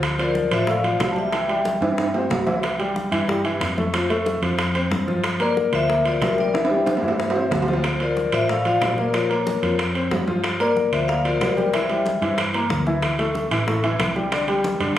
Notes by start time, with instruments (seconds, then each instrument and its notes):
Already playing: fingered electric bass D2, grand piano F3 F4
0.03 high bongo, high conga, high timbale
0.19 grand piano F3 F4, vibraphone A#4 D5, high bongo, high conga, high timbale
0.35 high bongo, high conga
0.51 fingered electric bass A1, grand piano F3 F4, vibraphone C5 E5, high bongo, high conga, high timbale
0.67 grand piano A3 A4, vibraphone D5 F5, high bongo, high conga
0.84 grand piano F3 F4, high conga, high timbale
0.99 fingered electric bass C2, high bongo, low bongo, high conga, high timbale, low timbale
1.11 vibraphone A5
1.16 grand piano G3 G4, vibraphone E5 G5, high bongo, high conga
1.32 grand piano E3 E4, high bongo, high conga, high timbale
1.48 grand piano G3 G4, high conga, high timbale
1.65 high bongo, high conga
1.81 fingered electric bass G2, grand piano E3 E4, high bongo, high timbale
1.98 high bongo, high conga, high timbale
2.14 grand piano C4 C5, high bongo, high conga, low timbale
2.30 fingered electric bass C2, high bongo, low bongo, high conga, low timbale
2.47 grand piano E3 E4, high bongo, high conga, low timbale
2.63 high bongo, high conga, high timbale
2.79 grand piano G3 G4, high bongo, high conga, high timbale
2.96 high bongo, high conga
3.11 fingered electric bass G2, grand piano E3 E4, high bongo, high conga, high timbale
3.28 grand piano G3 G4, high bongo, high conga
3.44 grand piano E3 E4, high conga, high timbale
3.61 fingered electric bass F2, high bongo, low bongo, high conga, high timbale
3.77 grand piano A3 A4, high bongo, high conga
3.94 grand piano F3 F4, high bongo, high conga, high timbale
4.10 grand piano A3 A4, high conga, high timbale
4.26 high bongo, high conga
4.42 fingered electric bass F2, grand piano F3 F4, high bongo, high timbale
4.59 high bongo, high conga, high timbale
4.75 grand piano C4 C5, high bongo, high conga, high timbale
4.91 fingered electric bass G2, high bongo, low bongo, high conga
5.08 grand piano F3 F4, high bongo, high conga
5.24 high bongo, high conga, high timbale
5.40 grand piano A#3 A#4, vibraphone A#4 D5, high bongo, high conga, high timbale
5.57 high bongo, high conga
5.72 fingered electric bass D2, grand piano F3 F4, vibraphone C5 E5, high bongo, high conga, high timbale
5.89 grand piano A#3 A#4, high bongo, high conga
6.05 grand piano F3 F4, vibraphone A#4 D5, high conga, high timbale
6.21 fingered electric bass C2, vibraphone A#4 E5, high bongo, low bongo, high conga, high timbale, low timbale
6.38 grand piano G3 G4, vibraphone A#4 D5, high bongo, high conga
6.54 grand piano E3 E4, vibraphone C5 E5, high bongo, high conga, high timbale
6.65 high timbale
6.70 grand piano G3 G4, high conga
6.86 high bongo, high conga, high timbale
6.97 low timbale
7.02 fingered electric bass G2, grand piano E3 E4, high bongo
7.08 low timbale
7.19 high bongo, high conga
7.30 low timbale
7.36 grand piano C4 C5, high bongo, high conga
7.51 fingered electric bass D2, high bongo, low bongo, high conga, low timbale
7.62 low timbale
7.68 grand piano F3 F4, high bongo, high conga
7.73 low timbale
7.84 high bongo, high conga, high timbale, claves
8.00 grand piano F3 F4, vibraphone A#4 D5, high bongo, high conga, high timbale
8.17 high bongo, high conga
8.32 fingered electric bass A1, grand piano F3 F4, vibraphone C5 E5, high bongo, high conga, high timbale, claves
8.49 grand piano A3 A4, vibraphone D5 F5, high bongo, high conga
8.65 grand piano F3 F4, vibraphone D5 F5, high conga, high timbale
8.81 fingered electric bass A#1, high bongo, low bongo, high conga, high timbale, low timbale, claves
8.98 grand piano A#3 A#4, vibraphone A#4 D5, high bongo, high conga
9.14 grand piano F3 F4, vibraphone A#4 C#5, high bongo, high conga, high timbale, claves
9.30 grand piano A#3 A#4, high conga, high timbale
9.47 high bongo, high conga
9.62 fingered electric bass F2, grand piano F3 F4, high bongo, high timbale
9.79 high bongo, high conga, high timbale, claves
9.95 grand piano C4 C5, high bongo, high conga, high timbale
10.11 fingered electric bass G2, high bongo, low bongo, high conga, low timbale
10.27 grand piano F3 F4, high bongo, high conga
10.44 high bongo, high timbale, claves
10.60 grand piano A#3 A#4, vibraphone A#4 D5, high bongo, high conga, high timbale
10.76 high bongo, high conga
10.92 fingered electric bass D2, grand piano F3 F4, vibraphone C5 E5, high bongo, high conga, high timbale, claves
11.08 grand piano A#3 A#4, vibraphone D5 F5, high bongo, high conga
11.25 grand piano F3 F4, vibraphone A#4 D5, high conga, high timbale
11.41 fingered electric bass C2, high bongo, low bongo, high conga, high timbale, low timbale, claves
11.57 grand piano G3 G4, vibraphone A#4 D5, high bongo, high conga
11.73 grand piano E3 E4, vibraphone C5 E5, high bongo, high conga, high timbale, claves
11.89 grand piano G3 G4, high conga, high timbale
12.06 high bongo, high conga
12.21 fingered electric bass G2, grand piano E3 E4, high bongo, high timbale
12.38 high bongo, high conga, high timbale, claves
12.54 grand piano A#3 A#4, high bongo, high conga, high timbale
12.70 fingered electric bass D2, high bongo, low bongo, high conga
12.86 grand piano E3 E4, high bongo, high conga
13.02 high bongo, high conga, high timbale, claves
13.19 grand piano A3 A4, high bongo, high conga, high timbale
13.35 high bongo, high conga
13.51 fingered electric bass A1, grand piano E3 E4, high bongo, high conga, high timbale, claves
13.67 grand piano A3 A4, high bongo, high conga
13.83 grand piano E3 E4, high conga, high timbale
13.99 fingered electric bass C2, high bongo, low bongo, high conga, high timbale, claves
14.16 grand piano G3 G4, high bongo, high conga
14.32 grand piano D3 D4, high bongo, high conga, high timbale, claves
14.48 grand piano G3 G4, high conga, high timbale
14.64 high bongo, high conga
14.80 fingered electric bass G2, grand piano D3 D4, high bongo, high timbale